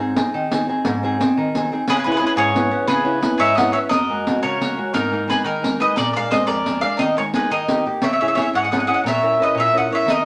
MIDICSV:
0, 0, Header, 1, 5, 480
1, 0, Start_track
1, 0, Tempo, 341880
1, 1192, Time_signature, 6, 3, 24, 8
1, 14391, End_track
2, 0, Start_track
2, 0, Title_t, "Mandolin"
2, 0, Program_c, 0, 25
2, 2662, Note_on_c, 0, 71, 93
2, 2743, Note_off_c, 0, 71, 0
2, 2760, Note_on_c, 0, 71, 71
2, 2850, Note_off_c, 0, 71, 0
2, 2867, Note_on_c, 0, 71, 70
2, 2956, Note_off_c, 0, 71, 0
2, 2971, Note_on_c, 0, 71, 66
2, 3029, Note_off_c, 0, 71, 0
2, 3046, Note_on_c, 0, 71, 80
2, 3142, Note_off_c, 0, 71, 0
2, 3181, Note_on_c, 0, 71, 81
2, 3260, Note_off_c, 0, 71, 0
2, 3346, Note_on_c, 0, 73, 102
2, 4007, Note_off_c, 0, 73, 0
2, 4037, Note_on_c, 0, 71, 86
2, 4713, Note_off_c, 0, 71, 0
2, 4766, Note_on_c, 0, 73, 87
2, 4771, Note_on_c, 0, 76, 84
2, 5016, Note_off_c, 0, 76, 0
2, 5022, Note_on_c, 0, 78, 81
2, 5231, Note_off_c, 0, 78, 0
2, 5237, Note_on_c, 0, 76, 91
2, 5287, Note_off_c, 0, 73, 0
2, 5307, Note_off_c, 0, 76, 0
2, 5466, Note_on_c, 0, 75, 93
2, 6161, Note_off_c, 0, 75, 0
2, 6214, Note_on_c, 0, 73, 83
2, 6929, Note_off_c, 0, 73, 0
2, 6934, Note_on_c, 0, 70, 90
2, 7401, Note_off_c, 0, 70, 0
2, 7434, Note_on_c, 0, 71, 80
2, 7656, Note_off_c, 0, 71, 0
2, 7661, Note_on_c, 0, 70, 81
2, 8159, Note_off_c, 0, 70, 0
2, 8165, Note_on_c, 0, 75, 90
2, 8374, Note_off_c, 0, 75, 0
2, 8392, Note_on_c, 0, 74, 91
2, 8656, Note_on_c, 0, 77, 94
2, 8658, Note_off_c, 0, 74, 0
2, 8863, Note_off_c, 0, 77, 0
2, 8866, Note_on_c, 0, 75, 92
2, 9076, Note_off_c, 0, 75, 0
2, 9082, Note_on_c, 0, 74, 87
2, 9565, Note_on_c, 0, 77, 86
2, 9594, Note_off_c, 0, 74, 0
2, 9788, Note_off_c, 0, 77, 0
2, 9813, Note_on_c, 0, 75, 88
2, 10059, Note_off_c, 0, 75, 0
2, 10079, Note_on_c, 0, 73, 85
2, 10149, Note_off_c, 0, 73, 0
2, 10326, Note_on_c, 0, 71, 79
2, 10531, Note_off_c, 0, 71, 0
2, 10551, Note_on_c, 0, 75, 91
2, 11006, Note_off_c, 0, 75, 0
2, 11285, Note_on_c, 0, 76, 77
2, 11394, Note_off_c, 0, 76, 0
2, 11415, Note_on_c, 0, 76, 61
2, 11507, Note_off_c, 0, 76, 0
2, 11524, Note_on_c, 0, 76, 69
2, 11608, Note_off_c, 0, 76, 0
2, 11624, Note_on_c, 0, 76, 64
2, 11710, Note_off_c, 0, 76, 0
2, 11727, Note_on_c, 0, 76, 71
2, 11802, Note_off_c, 0, 76, 0
2, 11819, Note_on_c, 0, 76, 70
2, 11914, Note_off_c, 0, 76, 0
2, 12007, Note_on_c, 0, 78, 90
2, 12107, Note_off_c, 0, 78, 0
2, 12137, Note_on_c, 0, 78, 64
2, 12226, Note_off_c, 0, 78, 0
2, 12243, Note_on_c, 0, 78, 66
2, 12330, Note_off_c, 0, 78, 0
2, 12355, Note_on_c, 0, 78, 59
2, 12434, Note_off_c, 0, 78, 0
2, 12456, Note_on_c, 0, 78, 73
2, 12534, Note_off_c, 0, 78, 0
2, 12555, Note_on_c, 0, 78, 64
2, 12633, Note_off_c, 0, 78, 0
2, 12750, Note_on_c, 0, 76, 86
2, 13235, Note_off_c, 0, 76, 0
2, 13243, Note_on_c, 0, 75, 77
2, 13435, Note_off_c, 0, 75, 0
2, 13475, Note_on_c, 0, 76, 96
2, 13720, Note_off_c, 0, 76, 0
2, 13726, Note_on_c, 0, 78, 79
2, 13942, Note_off_c, 0, 78, 0
2, 13966, Note_on_c, 0, 76, 91
2, 14175, Note_off_c, 0, 76, 0
2, 14180, Note_on_c, 0, 75, 90
2, 14391, Note_off_c, 0, 75, 0
2, 14391, End_track
3, 0, Start_track
3, 0, Title_t, "Mandolin"
3, 0, Program_c, 1, 25
3, 2664, Note_on_c, 1, 68, 89
3, 2752, Note_off_c, 1, 68, 0
3, 2794, Note_on_c, 1, 68, 63
3, 2860, Note_off_c, 1, 68, 0
3, 2877, Note_on_c, 1, 68, 64
3, 2961, Note_off_c, 1, 68, 0
3, 3001, Note_on_c, 1, 68, 59
3, 3061, Note_off_c, 1, 68, 0
3, 3078, Note_on_c, 1, 68, 71
3, 3159, Note_off_c, 1, 68, 0
3, 3180, Note_on_c, 1, 68, 57
3, 3259, Note_off_c, 1, 68, 0
3, 3326, Note_on_c, 1, 68, 96
3, 3996, Note_off_c, 1, 68, 0
3, 4058, Note_on_c, 1, 68, 79
3, 4725, Note_off_c, 1, 68, 0
3, 4740, Note_on_c, 1, 68, 67
3, 4986, Note_on_c, 1, 75, 75
3, 5220, Note_off_c, 1, 75, 0
3, 5225, Note_on_c, 1, 73, 64
3, 5272, Note_off_c, 1, 68, 0
3, 5295, Note_off_c, 1, 73, 0
3, 5465, Note_on_c, 1, 70, 80
3, 6160, Note_off_c, 1, 70, 0
3, 6219, Note_on_c, 1, 70, 75
3, 6897, Note_off_c, 1, 70, 0
3, 6941, Note_on_c, 1, 63, 72
3, 7404, Note_off_c, 1, 63, 0
3, 7447, Note_on_c, 1, 68, 68
3, 7638, Note_off_c, 1, 68, 0
3, 7643, Note_on_c, 1, 63, 70
3, 8111, Note_off_c, 1, 63, 0
3, 8145, Note_on_c, 1, 71, 78
3, 8361, Note_off_c, 1, 71, 0
3, 8367, Note_on_c, 1, 70, 82
3, 8606, Note_off_c, 1, 70, 0
3, 8612, Note_on_c, 1, 74, 74
3, 8839, Note_off_c, 1, 74, 0
3, 8856, Note_on_c, 1, 72, 75
3, 9075, Note_off_c, 1, 72, 0
3, 9093, Note_on_c, 1, 70, 79
3, 9550, Note_off_c, 1, 70, 0
3, 9572, Note_on_c, 1, 74, 75
3, 9780, Note_off_c, 1, 74, 0
3, 9786, Note_on_c, 1, 70, 72
3, 10044, Note_off_c, 1, 70, 0
3, 10061, Note_on_c, 1, 70, 62
3, 10131, Note_off_c, 1, 70, 0
3, 10310, Note_on_c, 1, 68, 57
3, 10523, Note_off_c, 1, 68, 0
3, 10554, Note_on_c, 1, 70, 76
3, 11008, Note_off_c, 1, 70, 0
3, 11268, Note_on_c, 1, 73, 73
3, 11375, Note_off_c, 1, 73, 0
3, 11410, Note_on_c, 1, 73, 49
3, 11500, Note_off_c, 1, 73, 0
3, 11516, Note_on_c, 1, 73, 50
3, 11605, Note_off_c, 1, 73, 0
3, 11631, Note_on_c, 1, 73, 48
3, 11707, Note_off_c, 1, 73, 0
3, 11724, Note_on_c, 1, 73, 71
3, 11807, Note_off_c, 1, 73, 0
3, 11825, Note_on_c, 1, 73, 51
3, 11908, Note_off_c, 1, 73, 0
3, 12017, Note_on_c, 1, 73, 67
3, 12104, Note_off_c, 1, 73, 0
3, 12110, Note_on_c, 1, 75, 51
3, 12215, Note_off_c, 1, 75, 0
3, 12231, Note_on_c, 1, 75, 59
3, 12324, Note_off_c, 1, 75, 0
3, 12338, Note_on_c, 1, 75, 49
3, 12425, Note_off_c, 1, 75, 0
3, 12467, Note_on_c, 1, 75, 63
3, 12527, Note_off_c, 1, 75, 0
3, 12544, Note_on_c, 1, 75, 51
3, 12627, Note_off_c, 1, 75, 0
3, 12735, Note_on_c, 1, 73, 81
3, 13179, Note_off_c, 1, 73, 0
3, 13225, Note_on_c, 1, 71, 70
3, 13426, Note_off_c, 1, 71, 0
3, 13443, Note_on_c, 1, 73, 68
3, 13680, Note_off_c, 1, 73, 0
3, 13708, Note_on_c, 1, 75, 62
3, 13911, Note_off_c, 1, 75, 0
3, 13933, Note_on_c, 1, 73, 64
3, 14137, Note_off_c, 1, 73, 0
3, 14193, Note_on_c, 1, 70, 81
3, 14391, Note_off_c, 1, 70, 0
3, 14391, End_track
4, 0, Start_track
4, 0, Title_t, "Nylon-string guitar"
4, 0, Program_c, 2, 24
4, 0, Note_on_c, 2, 44, 60
4, 0, Note_on_c, 2, 60, 50
4, 0, Note_on_c, 2, 63, 49
4, 0, Note_on_c, 2, 68, 52
4, 212, Note_off_c, 2, 60, 0
4, 212, Note_off_c, 2, 63, 0
4, 219, Note_off_c, 2, 44, 0
4, 220, Note_off_c, 2, 68, 0
4, 228, Note_on_c, 2, 60, 43
4, 232, Note_on_c, 2, 63, 46
4, 237, Note_on_c, 2, 68, 51
4, 478, Note_on_c, 2, 51, 67
4, 628, Note_off_c, 2, 60, 0
4, 628, Note_off_c, 2, 63, 0
4, 633, Note_off_c, 2, 68, 0
4, 728, Note_on_c, 2, 60, 47
4, 735, Note_on_c, 2, 63, 44
4, 741, Note_on_c, 2, 68, 56
4, 946, Note_off_c, 2, 60, 0
4, 948, Note_off_c, 2, 63, 0
4, 952, Note_off_c, 2, 51, 0
4, 955, Note_off_c, 2, 68, 0
4, 961, Note_on_c, 2, 60, 48
4, 969, Note_on_c, 2, 63, 41
4, 972, Note_on_c, 2, 68, 49
4, 1201, Note_on_c, 2, 44, 71
4, 1357, Note_off_c, 2, 60, 0
4, 1359, Note_off_c, 2, 63, 0
4, 1363, Note_off_c, 2, 68, 0
4, 1446, Note_on_c, 2, 60, 53
4, 1457, Note_on_c, 2, 63, 49
4, 1465, Note_on_c, 2, 68, 62
4, 1666, Note_off_c, 2, 60, 0
4, 1673, Note_off_c, 2, 63, 0
4, 1673, Note_off_c, 2, 68, 0
4, 1674, Note_off_c, 2, 44, 0
4, 1683, Note_on_c, 2, 60, 54
4, 1688, Note_on_c, 2, 63, 43
4, 1693, Note_on_c, 2, 68, 59
4, 1928, Note_on_c, 2, 51, 73
4, 2074, Note_off_c, 2, 60, 0
4, 2078, Note_off_c, 2, 63, 0
4, 2078, Note_off_c, 2, 68, 0
4, 2180, Note_on_c, 2, 60, 46
4, 2188, Note_on_c, 2, 63, 46
4, 2194, Note_on_c, 2, 68, 63
4, 2393, Note_off_c, 2, 51, 0
4, 2399, Note_off_c, 2, 60, 0
4, 2402, Note_off_c, 2, 63, 0
4, 2402, Note_off_c, 2, 68, 0
4, 2412, Note_on_c, 2, 60, 53
4, 2422, Note_on_c, 2, 63, 49
4, 2430, Note_on_c, 2, 68, 50
4, 2591, Note_off_c, 2, 60, 0
4, 2592, Note_off_c, 2, 63, 0
4, 2593, Note_off_c, 2, 68, 0
4, 2638, Note_on_c, 2, 49, 81
4, 2894, Note_on_c, 2, 61, 50
4, 2902, Note_on_c, 2, 59, 54
4, 2903, Note_on_c, 2, 64, 61
4, 3080, Note_off_c, 2, 59, 0
4, 3097, Note_off_c, 2, 64, 0
4, 3097, Note_on_c, 2, 59, 53
4, 3098, Note_off_c, 2, 61, 0
4, 3105, Note_off_c, 2, 49, 0
4, 3112, Note_on_c, 2, 61, 45
4, 3117, Note_on_c, 2, 64, 59
4, 3312, Note_on_c, 2, 44, 73
4, 3494, Note_off_c, 2, 59, 0
4, 3504, Note_off_c, 2, 61, 0
4, 3504, Note_off_c, 2, 64, 0
4, 3572, Note_on_c, 2, 59, 49
4, 3582, Note_on_c, 2, 61, 46
4, 3584, Note_on_c, 2, 64, 53
4, 3787, Note_off_c, 2, 59, 0
4, 3787, Note_off_c, 2, 61, 0
4, 3795, Note_off_c, 2, 64, 0
4, 3798, Note_off_c, 2, 44, 0
4, 3803, Note_on_c, 2, 61, 45
4, 3808, Note_on_c, 2, 59, 53
4, 3812, Note_on_c, 2, 64, 53
4, 4036, Note_on_c, 2, 49, 66
4, 4203, Note_off_c, 2, 59, 0
4, 4203, Note_off_c, 2, 61, 0
4, 4208, Note_off_c, 2, 64, 0
4, 4267, Note_on_c, 2, 59, 51
4, 4275, Note_on_c, 2, 61, 46
4, 4283, Note_on_c, 2, 64, 58
4, 4489, Note_off_c, 2, 59, 0
4, 4491, Note_off_c, 2, 61, 0
4, 4499, Note_off_c, 2, 64, 0
4, 4506, Note_on_c, 2, 61, 41
4, 4510, Note_on_c, 2, 59, 48
4, 4516, Note_on_c, 2, 64, 47
4, 4519, Note_off_c, 2, 49, 0
4, 4749, Note_on_c, 2, 44, 65
4, 4917, Note_off_c, 2, 59, 0
4, 4918, Note_off_c, 2, 61, 0
4, 4923, Note_off_c, 2, 64, 0
4, 5033, Note_on_c, 2, 61, 42
4, 5038, Note_on_c, 2, 59, 41
4, 5044, Note_on_c, 2, 64, 50
4, 5242, Note_off_c, 2, 61, 0
4, 5243, Note_off_c, 2, 44, 0
4, 5243, Note_off_c, 2, 59, 0
4, 5249, Note_off_c, 2, 64, 0
4, 5258, Note_on_c, 2, 61, 42
4, 5263, Note_on_c, 2, 59, 44
4, 5265, Note_on_c, 2, 64, 53
4, 5449, Note_off_c, 2, 61, 0
4, 5450, Note_off_c, 2, 59, 0
4, 5453, Note_off_c, 2, 64, 0
4, 5483, Note_on_c, 2, 42, 64
4, 5751, Note_on_c, 2, 56, 49
4, 5757, Note_on_c, 2, 58, 44
4, 5768, Note_on_c, 2, 66, 49
4, 5976, Note_off_c, 2, 42, 0
4, 5980, Note_off_c, 2, 56, 0
4, 5983, Note_off_c, 2, 58, 0
4, 5989, Note_off_c, 2, 66, 0
4, 5994, Note_on_c, 2, 56, 43
4, 6004, Note_on_c, 2, 58, 38
4, 6005, Note_on_c, 2, 66, 46
4, 6227, Note_on_c, 2, 49, 62
4, 6394, Note_off_c, 2, 56, 0
4, 6396, Note_off_c, 2, 58, 0
4, 6399, Note_off_c, 2, 66, 0
4, 6474, Note_on_c, 2, 56, 40
4, 6483, Note_on_c, 2, 58, 43
4, 6483, Note_on_c, 2, 66, 50
4, 6686, Note_off_c, 2, 56, 0
4, 6689, Note_off_c, 2, 58, 0
4, 6701, Note_off_c, 2, 66, 0
4, 6701, Note_on_c, 2, 56, 41
4, 6707, Note_off_c, 2, 49, 0
4, 6708, Note_on_c, 2, 58, 41
4, 6718, Note_on_c, 2, 66, 48
4, 6895, Note_off_c, 2, 56, 0
4, 6897, Note_off_c, 2, 58, 0
4, 6904, Note_off_c, 2, 66, 0
4, 6927, Note_on_c, 2, 44, 67
4, 7178, Note_on_c, 2, 56, 49
4, 7187, Note_on_c, 2, 58, 47
4, 7199, Note_on_c, 2, 63, 56
4, 7388, Note_off_c, 2, 56, 0
4, 7395, Note_off_c, 2, 58, 0
4, 7399, Note_off_c, 2, 63, 0
4, 7405, Note_on_c, 2, 56, 45
4, 7411, Note_on_c, 2, 58, 42
4, 7417, Note_off_c, 2, 44, 0
4, 7419, Note_on_c, 2, 63, 52
4, 7643, Note_on_c, 2, 51, 59
4, 7812, Note_off_c, 2, 56, 0
4, 7816, Note_off_c, 2, 58, 0
4, 7819, Note_off_c, 2, 63, 0
4, 7897, Note_on_c, 2, 56, 44
4, 7912, Note_on_c, 2, 58, 45
4, 7921, Note_on_c, 2, 63, 45
4, 8123, Note_off_c, 2, 56, 0
4, 8128, Note_off_c, 2, 58, 0
4, 8131, Note_off_c, 2, 51, 0
4, 8135, Note_off_c, 2, 63, 0
4, 8139, Note_on_c, 2, 56, 46
4, 8146, Note_on_c, 2, 58, 47
4, 8152, Note_on_c, 2, 63, 54
4, 8330, Note_off_c, 2, 56, 0
4, 8332, Note_off_c, 2, 58, 0
4, 8337, Note_off_c, 2, 63, 0
4, 8389, Note_on_c, 2, 46, 65
4, 8640, Note_on_c, 2, 56, 50
4, 8650, Note_on_c, 2, 58, 48
4, 8651, Note_on_c, 2, 62, 52
4, 8861, Note_off_c, 2, 46, 0
4, 8861, Note_off_c, 2, 58, 0
4, 8861, Note_off_c, 2, 62, 0
4, 8862, Note_off_c, 2, 56, 0
4, 8877, Note_on_c, 2, 56, 50
4, 8880, Note_on_c, 2, 58, 43
4, 8885, Note_on_c, 2, 62, 48
4, 9101, Note_on_c, 2, 41, 66
4, 9267, Note_off_c, 2, 56, 0
4, 9267, Note_off_c, 2, 58, 0
4, 9267, Note_off_c, 2, 62, 0
4, 9362, Note_on_c, 2, 56, 45
4, 9375, Note_on_c, 2, 62, 54
4, 9377, Note_on_c, 2, 58, 41
4, 9572, Note_off_c, 2, 56, 0
4, 9575, Note_off_c, 2, 41, 0
4, 9576, Note_off_c, 2, 58, 0
4, 9587, Note_off_c, 2, 62, 0
4, 9588, Note_on_c, 2, 56, 42
4, 9594, Note_on_c, 2, 58, 42
4, 9603, Note_on_c, 2, 62, 52
4, 9771, Note_off_c, 2, 56, 0
4, 9774, Note_off_c, 2, 58, 0
4, 9780, Note_off_c, 2, 62, 0
4, 9817, Note_on_c, 2, 51, 69
4, 10086, Note_on_c, 2, 56, 43
4, 10095, Note_on_c, 2, 63, 50
4, 10096, Note_on_c, 2, 58, 41
4, 10293, Note_off_c, 2, 51, 0
4, 10304, Note_off_c, 2, 56, 0
4, 10321, Note_off_c, 2, 58, 0
4, 10321, Note_off_c, 2, 63, 0
4, 10321, Note_on_c, 2, 56, 44
4, 10337, Note_on_c, 2, 58, 40
4, 10340, Note_on_c, 2, 63, 53
4, 10499, Note_off_c, 2, 56, 0
4, 10509, Note_off_c, 2, 58, 0
4, 10510, Note_off_c, 2, 63, 0
4, 10535, Note_on_c, 2, 51, 64
4, 10785, Note_on_c, 2, 58, 44
4, 10792, Note_on_c, 2, 63, 38
4, 10797, Note_on_c, 2, 67, 50
4, 11017, Note_off_c, 2, 51, 0
4, 11020, Note_off_c, 2, 58, 0
4, 11023, Note_off_c, 2, 63, 0
4, 11030, Note_off_c, 2, 67, 0
4, 11035, Note_on_c, 2, 58, 44
4, 11046, Note_on_c, 2, 63, 38
4, 11047, Note_on_c, 2, 67, 50
4, 11221, Note_off_c, 2, 58, 0
4, 11223, Note_off_c, 2, 63, 0
4, 11227, Note_off_c, 2, 67, 0
4, 11259, Note_on_c, 2, 49, 62
4, 11530, Note_on_c, 2, 61, 48
4, 11541, Note_on_c, 2, 64, 41
4, 11542, Note_on_c, 2, 68, 47
4, 11740, Note_off_c, 2, 61, 0
4, 11744, Note_off_c, 2, 49, 0
4, 11748, Note_off_c, 2, 64, 0
4, 11751, Note_off_c, 2, 68, 0
4, 11757, Note_on_c, 2, 61, 48
4, 11764, Note_on_c, 2, 64, 46
4, 11770, Note_on_c, 2, 68, 56
4, 11981, Note_on_c, 2, 44, 63
4, 12154, Note_off_c, 2, 61, 0
4, 12159, Note_off_c, 2, 64, 0
4, 12161, Note_off_c, 2, 68, 0
4, 12242, Note_on_c, 2, 61, 45
4, 12250, Note_on_c, 2, 64, 37
4, 12251, Note_on_c, 2, 68, 49
4, 12439, Note_off_c, 2, 64, 0
4, 12445, Note_off_c, 2, 61, 0
4, 12455, Note_off_c, 2, 68, 0
4, 12456, Note_on_c, 2, 64, 41
4, 12462, Note_on_c, 2, 61, 43
4, 12464, Note_off_c, 2, 44, 0
4, 12472, Note_on_c, 2, 68, 51
4, 12650, Note_off_c, 2, 64, 0
4, 12653, Note_off_c, 2, 61, 0
4, 12660, Note_off_c, 2, 68, 0
4, 12686, Note_on_c, 2, 46, 69
4, 12940, Note_on_c, 2, 61, 49
4, 12955, Note_on_c, 2, 64, 49
4, 12958, Note_on_c, 2, 70, 55
4, 13174, Note_off_c, 2, 46, 0
4, 13175, Note_off_c, 2, 61, 0
4, 13176, Note_off_c, 2, 64, 0
4, 13181, Note_off_c, 2, 70, 0
4, 13191, Note_on_c, 2, 61, 48
4, 13196, Note_on_c, 2, 64, 42
4, 13198, Note_on_c, 2, 70, 51
4, 13402, Note_on_c, 2, 46, 67
4, 13587, Note_off_c, 2, 61, 0
4, 13587, Note_off_c, 2, 64, 0
4, 13591, Note_off_c, 2, 70, 0
4, 13663, Note_on_c, 2, 61, 42
4, 13670, Note_on_c, 2, 64, 41
4, 13677, Note_on_c, 2, 70, 50
4, 13889, Note_off_c, 2, 46, 0
4, 13890, Note_off_c, 2, 61, 0
4, 13902, Note_off_c, 2, 64, 0
4, 13907, Note_on_c, 2, 61, 49
4, 13909, Note_off_c, 2, 70, 0
4, 13918, Note_on_c, 2, 64, 44
4, 13925, Note_on_c, 2, 70, 46
4, 14093, Note_off_c, 2, 61, 0
4, 14100, Note_off_c, 2, 64, 0
4, 14104, Note_off_c, 2, 70, 0
4, 14118, Note_on_c, 2, 51, 69
4, 14391, Note_off_c, 2, 51, 0
4, 14391, End_track
5, 0, Start_track
5, 0, Title_t, "Riq"
5, 230, Note_on_c, 9, 54, 68
5, 371, Note_off_c, 9, 54, 0
5, 723, Note_on_c, 9, 54, 60
5, 864, Note_off_c, 9, 54, 0
5, 1189, Note_on_c, 9, 54, 62
5, 1330, Note_off_c, 9, 54, 0
5, 1694, Note_on_c, 9, 54, 57
5, 1834, Note_off_c, 9, 54, 0
5, 2176, Note_on_c, 9, 54, 57
5, 2316, Note_off_c, 9, 54, 0
5, 2634, Note_on_c, 9, 54, 60
5, 2774, Note_off_c, 9, 54, 0
5, 3590, Note_on_c, 9, 54, 55
5, 3731, Note_off_c, 9, 54, 0
5, 4041, Note_on_c, 9, 54, 58
5, 4182, Note_off_c, 9, 54, 0
5, 4529, Note_on_c, 9, 54, 61
5, 4669, Note_off_c, 9, 54, 0
5, 5024, Note_on_c, 9, 54, 61
5, 5165, Note_off_c, 9, 54, 0
5, 5260, Note_on_c, 9, 54, 17
5, 5400, Note_off_c, 9, 54, 0
5, 5488, Note_on_c, 9, 54, 62
5, 5628, Note_off_c, 9, 54, 0
5, 5994, Note_on_c, 9, 54, 61
5, 6134, Note_off_c, 9, 54, 0
5, 6478, Note_on_c, 9, 54, 52
5, 6619, Note_off_c, 9, 54, 0
5, 6941, Note_on_c, 9, 54, 56
5, 7081, Note_off_c, 9, 54, 0
5, 7444, Note_on_c, 9, 54, 56
5, 7585, Note_off_c, 9, 54, 0
5, 7920, Note_on_c, 9, 54, 60
5, 8061, Note_off_c, 9, 54, 0
5, 8381, Note_on_c, 9, 54, 61
5, 8522, Note_off_c, 9, 54, 0
5, 8875, Note_on_c, 9, 54, 56
5, 9015, Note_off_c, 9, 54, 0
5, 9353, Note_on_c, 9, 54, 52
5, 9493, Note_off_c, 9, 54, 0
5, 9814, Note_on_c, 9, 54, 56
5, 9954, Note_off_c, 9, 54, 0
5, 10301, Note_on_c, 9, 54, 56
5, 10441, Note_off_c, 9, 54, 0
5, 10529, Note_on_c, 9, 54, 15
5, 10669, Note_off_c, 9, 54, 0
5, 10788, Note_on_c, 9, 54, 58
5, 10929, Note_off_c, 9, 54, 0
5, 11255, Note_on_c, 9, 54, 59
5, 11395, Note_off_c, 9, 54, 0
5, 11754, Note_on_c, 9, 54, 52
5, 11895, Note_off_c, 9, 54, 0
5, 12255, Note_on_c, 9, 54, 62
5, 12395, Note_off_c, 9, 54, 0
5, 12723, Note_on_c, 9, 54, 59
5, 12864, Note_off_c, 9, 54, 0
5, 14153, Note_on_c, 9, 54, 59
5, 14293, Note_off_c, 9, 54, 0
5, 14391, End_track
0, 0, End_of_file